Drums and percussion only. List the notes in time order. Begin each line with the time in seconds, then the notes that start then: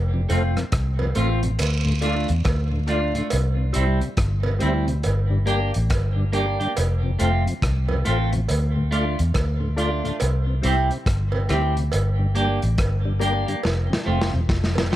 0.30 closed hi-hat
0.57 cross-stick, closed hi-hat
0.72 kick, cross-stick, closed hi-hat
0.99 cowbell
1.15 closed hi-hat
1.43 closed hi-hat
1.59 closed hi-hat, cowbell, vibraslap
2.02 closed hi-hat
2.29 closed hi-hat
2.45 kick, cross-stick, closed hi-hat, cowbell
2.88 closed hi-hat
3.15 closed hi-hat
3.30 closed hi-hat, cowbell
3.74 closed hi-hat
4.01 closed hi-hat
4.17 kick, cross-stick, closed hi-hat
4.43 cowbell
4.60 closed hi-hat
4.88 closed hi-hat
5.03 closed hi-hat, cowbell
5.47 closed hi-hat
5.74 closed hi-hat
5.90 kick, cross-stick, closed hi-hat, cowbell
6.33 closed hi-hat
6.61 closed hi-hat
6.77 closed hi-hat, cowbell
7.19 closed hi-hat
7.47 closed hi-hat
7.62 kick, cross-stick, closed hi-hat
7.89 cowbell
8.05 closed hi-hat
8.33 closed hi-hat
8.48 closed hi-hat, cowbell
8.92 closed hi-hat
9.19 closed hi-hat
9.34 kick, cross-stick, closed hi-hat, cowbell
9.78 closed hi-hat
10.05 closed hi-hat
10.20 closed hi-hat, cowbell
10.63 closed hi-hat
10.91 closed hi-hat
11.06 kick, cross-stick, closed hi-hat
11.32 cowbell
11.49 cross-stick, closed hi-hat
11.77 closed hi-hat
11.92 closed hi-hat, cowbell
12.35 closed hi-hat
12.62 closed hi-hat
12.78 kick, cross-stick, closed hi-hat, cowbell
13.21 closed hi-hat
13.48 closed hi-hat
13.63 snare, cowbell
13.93 snare
14.22 snare
14.49 kick, snare
14.64 snare
14.75 snare, cowbell